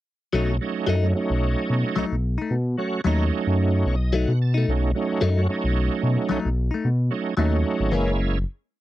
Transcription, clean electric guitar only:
0.33 F#3 A3 D#4
0.87 F#3 A3 D#4
1.96 F#3 A3 D#4
2.38 A3 D#4
3.04 F#3 A3 D#4
4.13 F#3 A3 D#4
4.54 A3 D#4
5.21 F#3 A3 D#4
6.29 F#3 A3 D#4
6.71 A3 D#4
7.37 F#3 A3 D#4
7.92 E3 A#3 C#4

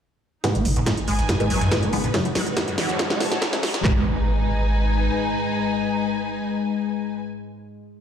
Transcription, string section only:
0.44 D#4
1.02 B4 G#5
2.14 F#4
2.48 C#5
2.91 A5
3.84 D#4
3.91 B4
3.97 G#5

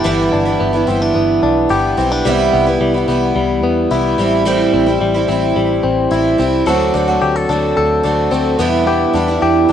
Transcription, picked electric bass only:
0.06 G1
0.33 G1
0.61 G1
0.88 G1
1.16 G1
1.43 B1
1.71 G1
1.98 B1
2.26 C2
2.54 C2
2.81 C2
3.08 C2
3.36 C2
3.63 E2
3.91 C2
4.19 A1
4.74 A1
5.01 A1
5.29 A1
5.57 A1
5.84 A1
6.12 A1
6.40 C2
6.67 D2
6.95 D2
7.22 D2
7.50 D2
7.78 D2
8.05 D2
8.33 D2
8.60 E2
9.14 E2
9.42 E2

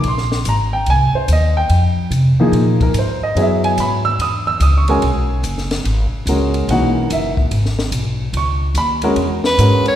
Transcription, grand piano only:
0.08 C6
0.49 A#5
0.73 G5
0.90 G#5
1.15 C5
1.33 D#5
1.57 G5
2.40 F3 A#3 D#4 G#4
2.82 A#4
2.99 C5
3.23 D#5
3.37 F#3 B3 E4 G#4
3.41 E5
3.64 G#5
3.80 B5
4.05 E6
4.22 D#6
4.47 E6
4.62 D#6
4.77 C#6
4.89 G#3 C#4 F#4 A#4 G#5
6.29 G#3 C#4 F#4 A#4
6.71 E3 A#3 D#4 F#4 F#5
7.13 E5
8.37 C#6
8.78 B5
9.03 G#3 C#4 F#4 A#4
9.59 G#3 C#4 F#4 A#4

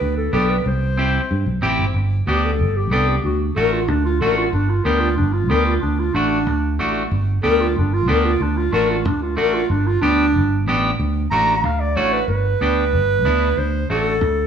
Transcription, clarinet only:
Already playing: B4
0.17 A4
0.34 A4
0.50 B4
0.67 C5
2.28 G4
2.45 A4
2.77 G4
2.92 A4
3.08 G4
3.25 F#4
3.56 A#4
3.73 F4
3.89 D4
4.05 F4
4.21 A#4
4.37 F4
4.53 D4
4.69 F4
4.85 A#4
5.00 F4
5.17 D4
5.33 F4
5.50 A#4
5.66 F4
5.82 D4
5.99 F4
6.14 D4
7.43 A#4
7.61 F4
7.78 D4
7.93 F4
8.09 A#4
8.25 F4
8.42 D4
8.57 F4
8.73 A#4
8.89 F4
9.07 D4
9.22 F4
9.37 A#4
9.54 F4
9.70 D4
9.87 F4
10.01 D4
11.31 A#5
11.65 F5
11.80 D5
11.96 C#5
12.13 B4
12.28 B4
13.58 C5
13.90 A4

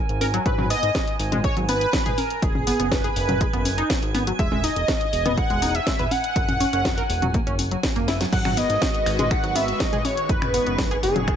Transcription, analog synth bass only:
0.09 G#1
0.46 G#1
0.83 G#1
1.19 G#1
1.57 G#1
2.06 G#2
2.42 F#1
2.80 F#1
3.16 F#1
3.53 F#1
4.03 G#1
4.39 E1
4.76 E1
5.13 E1
5.50 E1
5.99 E2
6.36 F#1
6.73 F#1
7.10 E1
7.47 F#1
7.96 F#1
8.33 G#1
8.70 G#1
9.06 G#1
9.44 G#1
9.93 G#2
10.29 F#1
10.67 F#1
11.03 F#1

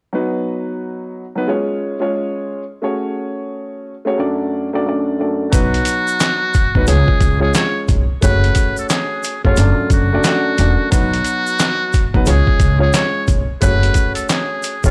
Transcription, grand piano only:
0.12 F#3 B3 D#4 F#4 B4
1.35 F#3 B3 D#4 F#4 B4
1.47 G#3 C#4 F4 G#4 C#5
2.00 G#3 C#4 F4 G#4 C#5
2.82 A3 C#4 F#4 G#4 C#5
4.05 A3 C#4 F#4 G#4 C#5
4.18 F#2 A3 D4 F#4 A4 D5
4.73 F#2 A3 D4 F#4 A4 D5
4.86 F#2 A3 D4 F#4 A4 D5
5.19 F#2 A3 D4 F#4 A4 D5
5.52 F#3 B3 D#4 F#4 B4
6.75 F#3 B3 D#4 F#4 B4
6.86 G#3 C#4 F4 G#4 C#5
7.39 G#3 C#4 F4 G#4 C#5
8.21 A3 C#4 F#4 G#4 C#5
9.44 A3 C#4 F#4 G#4 C#5
9.57 F#2 F#3 A3 D4 A4 D5
10.12 F#2 A3 D4 F#4 A4 D5
10.26 F#2 A3 D4 F#4 A4 D5
10.58 F#2 A3 D4 F#4 A4 D5
10.91 F#3 B3 D#4 F#4 B4
12.14 F#3 B3 D#4 F#4 B4
12.25 G#3 C#4 F4 G#4 C#5
12.78 G#3 C#4 F4 G#4 C#5
13.60 A3 C#4 F#4 G#4 C#5
14.84 A3 C#4 F#4 G#4 C#5

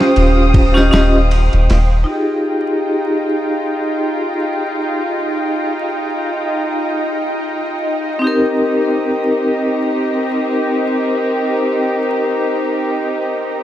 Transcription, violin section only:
Already playing: C5 F5 G5 D#6
2.07 F4 D#5 G5
8.22 C4 G4 A#4

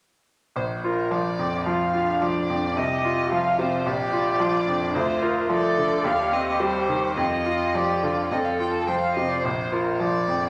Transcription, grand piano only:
0.56 A#1
0.84 F4
1.11 F3
1.39 F2
1.66 F3
1.94 F4
2.22 F3
2.49 F2
2.77 C2
3.05 F4
3.32 F3
3.59 C3
3.86 A#1
4.13 F4
4.40 F3
4.68 F2
4.95 D2
5.22 F4
5.50 F3
5.78 D3
6.04 D#2
6.32 C4
6.60 G3
6.89 D#3
7.17 F2
7.46 F4
7.75 F3
8.03 D3
8.32 F2
8.60 F4
8.88 F3
9.17 C3
9.45 A#1
9.72 F4
10.00 F3
10.28 F2

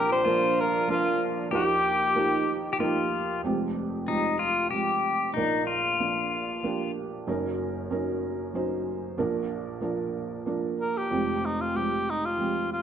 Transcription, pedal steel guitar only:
Already playing: G4
0.25 F4
1.51 G4
2.73 G4
2.80 F4
4.08 D#4
4.39 F4
4.71 G4
5.34 D#4
5.67 F4

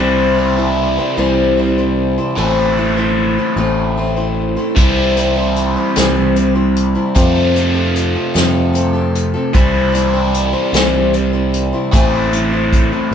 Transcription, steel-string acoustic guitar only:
Already playing: C3
0.00 E3 G3 C4 E4 C5
0.37 G3 C4 E4 C5
0.57 G3 C4 E4 C5
0.98 G3 C4 E4 C5
1.17 C3 E3 G3 C4 E4 C5
1.57 G3 C4 E4 C5
1.78 G3 C4 E4 C5
2.18 G3 C4 E4 C5
2.37 A2 E3 A3 C4 E4 C5
2.78 A3 C4 E4 C5
2.97 A3 C4 E4 C5
3.38 A3 C4 E4 C5
3.57 A2 E3 A3 C4 E4 C5
3.97 A3 C4 E4 C5
4.16 A3 C4 E4 C5
4.56 A3 C4 E4 C5
4.77 C3 E3 G3 C4 E4 C5
5.16 G3 C4 E4 C5
5.36 G3 C4 E4 C5
5.76 G3 C4 E4 C5
5.96 C3 E3 G3 C4 E4 C5
6.36 G3 C4 E4 C5
6.55 G3 C4 E4 C5
6.95 G3 C4 E4 C5
7.15 F3 G3 C4 G4 A4
7.54 G3 C4 G4 A4
7.73 C4 G4 A4
8.14 C4 G4 A4
8.34 F3 G3 C4 G4 A4
8.73 G3 C4 G4 A4
8.93 C4 G4 A4
9.34 C4 G4 A4
9.53 C3 E3 G3 C4 E4 C5
9.93 G3 C4 E4 C5
10.13 G3 C4 E4 C5
10.53 G3 C4 E4 C5
10.73 C3 E3 G3 C4 E4 C5
11.13 G3 C4 E4 C5
11.33 G3 C4 E4 C5
11.73 G3 C4 E4 C5
11.93 A2 E3 A3 C4 E4 C5
12.32 A3 C4 E4 C5
12.52 A3 C4 E4 C5
12.92 A3 C4 E4 C5

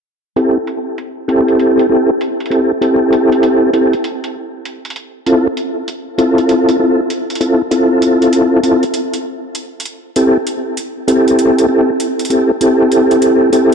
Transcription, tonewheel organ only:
0.36 C4 E4 G4 A4
1.28 C4 E4 G4 A4
1.89 C4 E4 G4 A4
2.50 C4 E4 G4 A4
2.81 C4 E4 G4 A4
3.73 C4 E4 G4 A4
5.26 C4 E4 F4 A4
6.18 C4 E4 F4 A4
6.79 C4 E4 F4 A4
7.40 C4 E4 F4 A4
7.71 C4 E4 F4 A4
8.63 C4 E4 F4 A4
10.16 C4 E4 G4 A4
11.08 C4 E4 G4 A4
11.69 C4 E4 G4 A4
12.30 C4 E4 G4 A4
12.61 C4 E4 G4 A4
13.52 C4 E4 G4 A4

